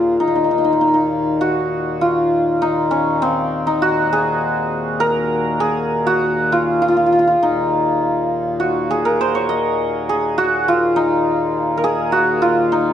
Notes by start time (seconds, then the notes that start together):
Already playing: D#2 A#2 F4 G#4 A#4
0.19 D#2 A#2 D#4
0.28 D#4
0.35 D#4
0.44 D#4
0.51 D#4
0.58 D#4
0.65 D#4
0.73 D#4
0.81 D#4
0.87 D#4
0.94 D#4
1.41 F#4
2.01 F4
2.62 D#4
2.91 C#4
3.22 C4
3.67 D#4
3.82 F#4
4.13 G#4
5.00 A#4
5.60 G#4
6.07 F#4
6.52 F4
6.82 F4
6.88 F4
6.97 F4
7.06 F4
7.12 F4
7.19 F4
7.27 F4
7.37 D#2 A#2
7.43 D#4
8.60 F#4
8.91 G#4
9.05 A#4
9.21 C5
9.35 C#5
9.49 D#5
10.09 G#4
10.38 F#4
10.68 F4
10.96 D#4
11.77 A#4
11.84 G#4
12.12 F#4
12.42 F4
12.72 D#4